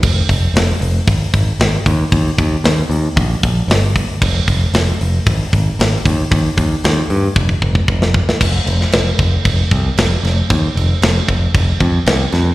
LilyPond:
<<
  \new Staff \with { instrumentName = "Picked electric bass" } { \clef bass \time 4/4 \key f \minor \tempo 4 = 115 f,,8 f,,8 f,,8 f,,8 aes,,8 aes,,8 aes,,8 ees,8 | ees,8 ees,8 ees,8 ees,8 bes,,8 bes,,8 g,,4 | f,,8 f,,8 f,,8 f,,8 aes,,8 aes,,8 aes,,8 ees,8 | ees,8 ees,8 ees,8 g,8 f,,8 f,,8 f,,4 |
f,,8 f,,8 f,,8 f,,8 f,,8 c,8 f,,8 f,,8 | ees,8 f,,8 f,,8 f,,8 f,,8 f,8 c,8 f,8 | }
  \new DrumStaff \with { instrumentName = "Drums" } \drummode { \time 4/4 <cymc bd>8 <hho bd>8 <hho sn>8 hho8 <hho bd>8 <hho bd>8 <hho sn>8 <hho bd>8 | <hho bd>8 <hho bd>8 <hho sn>8 hho8 <hho bd>8 <hho bd>8 <hho sn>8 <hho bd>8 | <cymc bd>8 <hho bd>8 <hho sn>8 hho8 <hho bd>8 <hho bd>8 <hho sn>8 <hho bd>8 | <hho bd>8 <hho bd>8 <hho sn>8 hho8 bd16 bd16 bd16 bd16 bd16 sn16 bd16 sn16 |
<cymc bd>8 cymc16 sn16 <cymc sn>8 <cymc bd>8 <cymc bd>8 <cymc bd>8 <cymc sn>8 <cymc sn>8 | <cymc bd>8 cymc8 <cymc sn>8 <cymc bd>8 <cymc bd>8 <cymc bd>8 <cymc sn>8 <cymc sn>8 | }
>>